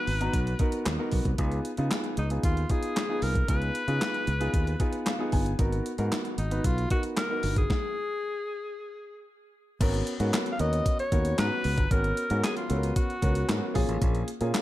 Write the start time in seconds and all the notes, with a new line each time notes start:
Already playing: B3 B4
0.07 G#1, open hi-hat
0.20 B3 D#4 F#4 A#5, closed hi-hat
0.33 B1, kick, closed hi-hat
0.47 closed hi-hat
0.59 B3 D#4 F#4 A#4, kick, closed hi-hat
0.72 closed hi-hat
0.86 D#2, snare, clap, closed hi-hat
0.99 B3 D#4 F#4 A#4
1.12 B1, kick, open hi-hat
1.25 C2, kick, closed hi-hat
1.38 C#2 B3 D#4 F4 G#4, kick, closed hi-hat
1.52 closed hi-hat
1.65 closed hi-hat
1.77 C#3 B3 D#4 F4 G#4, closed hi-hat
1.91 snare, clap, closed hi-hat
2.04 closed hi-hat
2.17 C#2 D#4, closed hi-hat
2.30 B3 D#4 F4 G#4, closed hi-hat
2.43 D#2 F4, kick, closed hi-hat
2.57 closed hi-hat
2.69 B3 D#4 F4 G#4, kick, closed hi-hat
2.83 closed hi-hat
2.96 snare, clap, closed hi-hat
3.09 B3 D#4 F4 G#4
3.22 C2 A#4, open hi-hat
3.35 kick, closed hi-hat
3.48 C#2 B3 D#4 F4 G#4 B4, kick, closed hi-hat
3.62 closed hi-hat
3.75 closed hi-hat
3.88 C#3 B3 D#4 F4 G#4, closed hi-hat
4.01 snare, clap, closed hi-hat
4.14 closed hi-hat
4.27 C#2, closed hi-hat
4.40 B3 D#4 F4 G#4, closed hi-hat
4.54 D#2, kick, closed hi-hat
4.67 closed hi-hat
4.80 B3 D#4 F4 G#4, kick, closed hi-hat
4.93 closed hi-hat
5.06 F5, snare, clap, closed hi-hat
5.19 B3 D#4 F4 G#4
5.32 G1 G#5, kick, open hi-hat
5.46 closed hi-hat
5.59 G#1 B3 D#4 F#4 A#4, kick, closed hi-hat
5.73 closed hi-hat
5.86 closed hi-hat
5.98 G#2 B3 D#4 F#4 A#4, closed hi-hat
6.12 snare, clap, closed hi-hat
6.25 closed hi-hat
6.38 G#1 D#4, closed hi-hat
6.51 B3 D#4 F#4 B4, closed hi-hat
6.64 B1 F4, kick, closed hi-hat
6.78 closed hi-hat
6.90 B3 D#4 F#4 A#4, kick, closed hi-hat
7.03 closed hi-hat
7.17 A#4, snare, clap, closed hi-hat
7.30 B3 D#4 F#4 A#4
7.43 G1, open hi-hat
7.56 G#4, kick, closed hi-hat
7.70 kick, snare
9.81 G#1 B3 C#4 F#4 A#4, kick, closed hi-hat, crash
9.94 closed hi-hat
10.07 closed hi-hat
10.20 G#2 B3 C#4 F#4 A#4, closed hi-hat
10.33 snare, clap, closed hi-hat
10.46 closed hi-hat
10.53 F5
10.59 D#2 B3 C#4 F#4 A#4 D#5, closed hi-hat
10.73 closed hi-hat
10.86 kick, closed hi-hat
10.99 C#5, closed hi-hat
11.12 D#2 B3 C#4 F#4 A#4, kick, closed hi-hat
11.25 closed hi-hat
11.38 G#2 B3 C#4 F#4 B4 A#5, snare, clap, closed hi-hat
11.64 C#2, open hi-hat
11.78 G1, kick, closed hi-hat
11.91 G#1 B3 C#4 F#4 A#4, kick, closed hi-hat
12.04 closed hi-hat
12.17 closed hi-hat
12.30 G#2 B3 C#4 F#4 A#4, closed hi-hat
12.44 G#4, snare, clap, closed hi-hat
12.57 F4, closed hi-hat
12.69 C#2 B3 C#4 F#4 A4, closed hi-hat
12.76 A#4
12.83 closed hi-hat
12.96 F#4, kick, closed hi-hat
13.10 closed hi-hat
13.22 C#2 B3 C#4 F#4 A#4, kick, closed hi-hat
13.35 closed hi-hat
13.48 G#2 B3 C#4 F#4 A#4, snare, clap, closed hi-hat
13.74 A#1 A#3 C#4 F4 G#4, kick, open hi-hat
13.88 A1, closed hi-hat
14.02 A#1, kick, closed hi-hat
14.15 closed hi-hat
14.28 closed hi-hat
14.41 A#2 A#3 C#4 F4 G#4, closed hi-hat
14.54 snare, clap, closed hi-hat